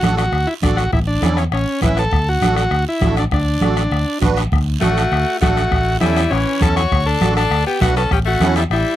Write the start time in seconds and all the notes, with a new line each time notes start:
Already playing: F#4
0.03 A1 D4 F#4 A4, bombo rim, high conga, short guiro
0.17 F#4, bombo rim, short guiro
0.32 D2, bombo rim, high conga, long guiro
0.47 E4
0.62 A1 D4 F#4 A4, bombo low, bombo rim, high conga, short guiro
0.77 F#4, bombo rim, short guiro
0.92 A1 E4, bombo low, bombo rim, high conga, long guiro
1.07 D4
1.22 E2 C#4 E4 A4, bombo rim, high conga, short guiro
1.37 C#4, bombo rim, short guiro
1.51 A1 C#4, bombo rim, high conga, long guiro
1.82 A1 C#4 E4 B4, bombo low, bombo rim, high conga, short guiro
1.97 A4, bombo rim, short guiro
2.11 D2, bombo low, bombo rim, high conga, long guiro
2.29 F#4
2.41 A1 D4 F#4 A4, bombo rim, high conga, short guiro
2.56 F#4, bombo rim, short guiro
2.71 D2, bombo rim, high conga, long guiro
2.89 E4
3.01 A1 D4 F#4 A4, bombo low, bombo rim, high conga, short guiro
3.17 D4, bombo rim, short guiro
3.31 D2 D4, bombo low, bombo rim, high conga, long guiro
3.61 A1 D4 F#4 A4, bombo rim, high conga, short guiro
3.77 bombo rim, short guiro
3.91 D2, bombo rim, high conga, long guiro
4.21 A1 D4 F#4 B4, bombo low, bombo rim, high conga, short guiro
4.37 bombo rim, short guiro
4.52 D2, bombo low, bombo rim, high conga, long guiro
4.80 A1 A3 D4 F#4 A4, bombo rim, high conga, short guiro
4.97 bombo rim, short guiro
5.11 D2, bombo rim, high conga, long guiro
5.41 A1 A3 D4 F#4 A4, bombo low, bombo rim, high conga, short guiro
5.57 bombo rim, short guiro
5.71 A1, bombo low, bombo rim, high conga, long guiro
6.00 E2 G3 C#4 E4 A4, bombo rim, high conga, short guiro
6.16 bombo rim, short guiro
6.30 A1 E3 C#4, bombo rim, high conga, long guiro
6.61 E2 C#4 E4 A4, bombo low, bombo rim, high conga, short guiro
6.76 F#4 C#5, bombo rim, short guiro
6.91 D2, bombo low, bombo rim, high conga, long guiro
7.06 D4 A4
7.21 A1 D4 F#4 A4, bombo rim, high conga, short guiro
7.37 D4 A4, bombo rim, short guiro
7.50 D2, bombo rim, long guiro
7.67 B3 G4
7.81 B1 A3 D4 F#4 B4, bombo low, bombo rim, high conga, short guiro
7.96 C#4 A4, bombo rim, short guiro
8.11 A1 C#4 G4, bombo low, bombo rim, high conga, long guiro
8.25 A3 F#4
8.40 E2 C#4 E4 A4, bombo rim, high conga, short guiro
8.56 G3 E4, bombo rim, short guiro
8.70 A1 G3 E4, bombo rim, high conga, long guiro